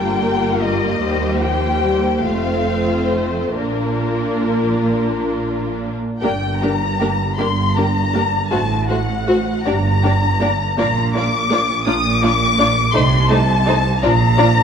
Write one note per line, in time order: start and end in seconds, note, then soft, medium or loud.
0.00 1.00 G1 medium
0.00 1.00 G2 medium
0.00 1.00 G3 soft
0.00 2.24 A#3 medium
0.00 0.98 F4 soft
0.00 1.02 A#4 medium
0.00 0.64 G5 medium
0.65 1.41 D#5 medium
1.02 2.21 D#2 medium
1.02 2.22 D#2 soft
1.02 1.40 G3 medium
1.02 2.22 G4 medium
1.02 2.23 C5 soft
1.41 1.82 F3 soft
1.41 2.24 G5 medium
1.82 2.23 G3 soft
2.24 3.56 F1 soft
2.24 3.56 F2 soft
2.24 3.53 A3 soft
2.24 3.56 C4 soft
2.24 3.54 F4 soft
2.24 3.53 C5 soft
2.24 3.10 F5 medium
3.10 3.56 C5 medium
3.55 5.96 A#1 soft
3.55 5.96 A#2 soft
3.55 6.01 A#3 soft
3.55 5.96 D4 soft
3.55 5.96 F4 soft
3.55 6.00 A#4 soft
3.55 5.75 A#4 medium
6.21 7.25 G1 medium
6.21 7.25 G2 medium
6.21 6.31 A#3 medium
6.21 6.31 D4 medium
6.21 6.29 G4 medium
6.21 6.29 A#4 medium
6.21 6.59 G5 medium
6.61 6.70 A#3 soft
6.61 6.70 D4 soft
6.61 6.70 G4 soft
6.61 6.70 A#4 soft
6.61 7.38 A#5 medium
7.00 7.09 A#3 medium
7.00 7.09 D4 medium
7.00 7.08 G4 medium
7.00 7.09 A#4 medium
7.37 8.38 G1 medium
7.37 8.37 G2 medium
7.37 7.47 A#3 soft
7.37 7.47 D4 soft
7.37 7.46 G4 medium
7.37 7.46 A#4 medium
7.37 7.74 C6 medium
7.75 7.84 A#3 soft
7.75 7.85 D4 soft
7.75 7.85 G4 soft
7.75 7.84 A#4 soft
7.75 8.50 A#5 medium
8.14 8.22 A#3 medium
8.14 8.23 D4 soft
8.14 8.22 G4 soft
8.14 8.22 A#4 soft
8.49 9.53 A1 medium
8.49 9.52 A2 medium
8.49 8.60 A3 medium
8.49 8.59 F#4 medium
8.49 8.59 C5 medium
8.49 8.87 A5 medium
8.89 8.98 A3 medium
8.89 8.97 F#4 soft
8.89 8.98 F#4 soft
8.89 8.98 C5 medium
8.89 9.64 F#5 medium
9.28 9.36 A3 medium
9.28 9.36 F#4 soft
9.28 9.36 F#4 medium
9.28 9.36 C5 medium
9.65 10.65 G1 medium
9.65 10.65 G2 medium
9.65 9.73 A#3 soft
9.65 9.74 D4 soft
9.65 9.74 G4 medium
9.65 9.73 D5 medium
9.65 10.77 A#5 medium
10.03 10.11 A#3 medium
10.03 10.11 D4 medium
10.03 10.12 G4 medium
10.03 10.12 D5 medium
10.40 10.48 A#3 medium
10.40 10.48 D4 medium
10.40 10.48 G4 soft
10.40 10.49 D5 soft
10.77 11.74 A#1 medium
10.77 11.74 A#2 medium
10.77 10.85 A#3 medium
10.77 10.86 D4 medium
10.77 10.87 F4 medium
10.77 10.86 D5 medium
10.77 11.14 A#5 medium
11.14 11.22 A#3 medium
11.14 11.22 D4 soft
11.14 11.25 F4 medium
11.14 11.26 D5 medium
11.14 11.84 D6 medium
11.50 11.58 A#3 medium
11.50 11.58 D4 medium
11.50 11.60 F4 medium
11.50 11.60 D5 medium
11.85 12.81 A#1 medium
11.85 12.81 A#2 medium
11.85 11.94 A#3 medium
11.85 11.94 D4 medium
11.85 11.96 F4 medium
11.85 11.95 D5 medium
11.85 12.21 D#6 medium
12.20 12.30 A#3 medium
12.20 12.30 D4 medium
12.20 12.31 F4 medium
12.20 12.31 D5 medium
12.20 12.93 D6 loud
12.59 12.67 A#3 medium
12.59 12.67 D4 medium
12.59 12.67 F4 medium
12.59 12.67 D5 medium
12.93 13.90 C2 medium
12.93 13.90 C3 medium
12.93 13.02 A3 medium
12.93 13.02 D#4 medium
12.93 13.02 C5 medium
12.93 13.29 C6 medium
13.29 13.37 A3 medium
13.29 13.37 D#4 medium
13.29 13.39 D#4 medium
13.29 13.38 C5 medium
13.29 14.02 A5 loud
13.66 13.74 A3 medium
13.66 13.74 D#4 medium
13.66 13.76 D#4 medium
13.66 13.76 C5 medium
14.00 14.63 A#1 medium
14.00 14.63 A#2 medium
14.00 14.11 F3 medium
14.00 14.10 D4 medium
14.00 14.11 F4 medium
14.00 14.11 D5 medium
14.00 14.63 A#5 loud
14.38 14.46 F3 medium
14.38 14.46 D4 medium
14.38 14.46 F4 medium
14.38 14.46 D5 medium